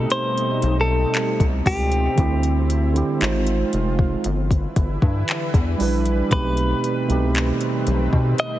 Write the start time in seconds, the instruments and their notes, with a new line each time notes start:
Already playing: analog synth pad B2 G3 A3 D#4, tine electric piano B2 A3 C4 D#4 G4, clean electric guitar A4, impact
0.10 analog synth pad C4, clean electric guitar C5, closed hi-hat
0.38 closed hi-hat
0.62 analog synth bass B1, closed hi-hat
0.81 clean electric guitar A4
1.14 clap, closed hi-hat
1.40 analog synth bass C2, kick, closed hi-hat
1.66 analog synth bass C#2, clean electric guitar G4, kick, open hi-hat
1.92 closed hi-hat
2.16 analog synth bass D2, tine electric piano D3 C4 E4, analog synth pad D3 E4, kick, closed hi-hat
2.20 tine electric piano G4
2.43 closed hi-hat
2.70 closed hi-hat
2.93 tine electric piano D3 C4 E4, closed hi-hat
2.98 tine electric piano G4
3.19 analog synth bass G#1, analog synth pad D#3 F3 G#3 F4, tine electric piano G#3 D#4 F4, clap, closed hi-hat
3.24 tine electric piano C5
3.47 closed hi-hat
3.73 analog synth bass F1, closed hi-hat
3.99 kick
4.24 analog synth bass G1, analog synth pad D3 E3 G3 E4 B4, closed hi-hat
4.51 kick, closed hi-hat
4.76 analog synth bass G1, kick, closed hi-hat
5.02 analog synth bass G2, kick
5.28 clap, closed hi-hat
5.54 analog synth bass E2, kick, closed hi-hat
5.78 analog synth bass A#1, tine electric piano G3 D4 E4, open hi-hat
5.82 tine electric piano B4
6.05 closed hi-hat
6.30 analog synth bass B1, tine electric piano B2 A3 C4 D#4, analog synth pad D#3 A3 C4, clean electric guitar B4, kick, closed hi-hat
6.34 tine electric piano G4
6.57 closed hi-hat
6.84 closed hi-hat
7.07 analog synth bass C2, tine electric piano B2 A3 C4 D#4, closed hi-hat
7.12 tine electric piano G4
7.35 clap, closed hi-hat
7.61 closed hi-hat
7.87 analog synth bass B1, closed hi-hat
8.13 analog synth bass B2, kick
8.38 clean electric guitar D#5, closed hi-hat